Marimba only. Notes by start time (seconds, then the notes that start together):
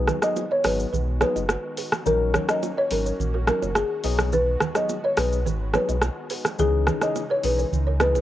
0.23 D#5
0.52 C#5
0.65 B4
1.22 B4
2.07 A#4
2.50 D#5
2.78 C#5
2.92 A#4
3.48 A#4
3.77 G#4
4.33 B4
4.76 D#5
5.05 C#5
5.18 B4
5.75 B4
6.60 G#4
7.03 D#5
7.31 C#5
7.45 B4
8.01 B4